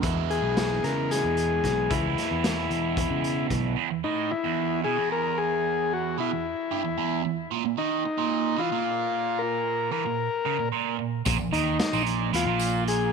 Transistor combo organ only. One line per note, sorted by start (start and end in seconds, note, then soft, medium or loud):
0.30 0.85 G#4 medium
0.84 1.11 A#4 medium
1.11 1.93 G#4 medium
1.91 3.47 E4 medium
4.04 4.32 D#4 medium
4.31 4.81 E4 medium
4.84 5.09 G#4 loud
5.12 5.39 A#4 loud
5.38 5.93 G#4 medium
5.93 6.17 F#4 medium
6.20 7.22 E4 medium
7.78 8.61 D#4 medium
8.59 9.42 F4 medium
9.39 9.91 A#4 loud
9.92 10.69 A#4 medium
11.53 12.03 D#4 loud
12.35 12.84 F4 medium
12.88 13.12 G#4 medium